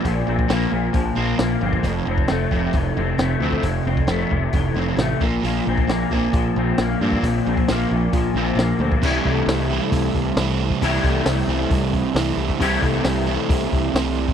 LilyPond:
<<
  \new Staff \with { instrumentName = "Clean electric guitar" } { \time 4/4 \key c \mixolydian \tempo 4 = 134 <bes, f bes c'>8 c'8 bes8 bes,8 f8 c'8 bes8 c'8 | f,8 c'8 a8 c8 e8 c'8 a8 c'8 | f,8 c'8 a8 c8 e8 c'8 a8 bes,8 | bes,8 c'8 bes8 bes,8 f8 c'8 bes8 c'8 |
bes,8 c'8 bes8 bes,8 f8 c'8 bes8 c'8 | <c e a e' g'>1 | <c e a e' g'>1 | <c e a e' g'>1 | }
  \new Staff \with { instrumentName = "Overdriven electric guitar" } { \clef bass \time 4/4 \key c \mixolydian <bes, f>8 <bes, f>8 <bes, f bes>8 <bes, f>8 <bes, f>8 <bes, f bes>8 <bes, f>8 <bes, f>8 | <f, c f>8 <f, c>8 <f, c>8 <f, c f>8 <f, c>8 <f, c>8 <f, c>8 <f, c f>8 | <f, c>8 <f, c>8 <f, c f>8 <f, c>8 <f, c>8 <f, c f>8 <f, c>8 <bes, f bes>8 | <bes, f bes>8 <bes, f>8 <bes, f>8 <bes, f bes>8 <bes, f>8 <bes, f>8 <bes, f>8 <bes, f bes>8 |
<bes, f>8 <bes, f>8 <bes, f bes>8 <bes, f>8 <bes, f>8 <bes, f bes>8 <bes, f>8 <bes, f>8 | <c e g c' e'>4. <c e g c' e'>4. <c e g c' e'>4 | <c e g c' e'>4. <c e g c' e'>4. <c e g c' e'>4 | <c e g c' e'>4. <c e g c' e'>4. <c e g c' e'>4 | }
  \new Staff \with { instrumentName = "Picked electric bass" } { \clef bass \time 4/4 \key c \mixolydian bes,,8 bes,,8 bes,,8 bes,,8 bes,,8 bes,,8 bes,,8 g,,8 | f,,8 f,,8 f,,8 f,,8 f,,8 f,,8 f,,8 d,8 | f,,8 f,,8 f,,8 f,,8 f,,8 f,,8 a,,8 bes,,8 | bes,,8 bes,,8 bes,,8 bes,,8 bes,,8 bes,,8 bes,,8 g,8 |
bes,,8 bes,,8 bes,,8 bes,,8 bes,,8 bes,,8 bes,,8 d,8 | c,8 c,8 c,4 c,8 c,8 c,4 | c,8 c,8 c,8 c,8 c,4 c,8 c,8 | c,8 c,8 c,4 c,8 c,8 c,4 | }
  \new DrumStaff \with { instrumentName = "Drums" } \drummode { \time 4/4 <hho bd>8. bd16 <hho sn>4 <hho bd>4 <hho sn>8. bd16 | <hho bd>8. bd16 <hho sn>8 bd8 <hho bd>4 <hho sn>8. bd16 | <hho bd>8. bd16 <hho sn>8 bd8 <hho bd>4 <hho sn>8 bd8 | hho8. bd16 <hho sn>8 bd8 <hho bd>4 <hho sn>8. bd16 |
<hho bd>8. bd16 <hho sn>4 <hho bd>4 <hho sn>8. bd16 | <cymc bd>8 bd8 <hho sn>4 <hho bd>8 bd8 <hho sn>8. bd16 | <hho bd>8 bd8 <hho sn>4 <hho bd>8 bd8 <hho sn>8. bd16 | <hho bd>8 bd8 <hho sn>4 <hho bd>8 bd8 <hho sn>8. bd16 | }
>>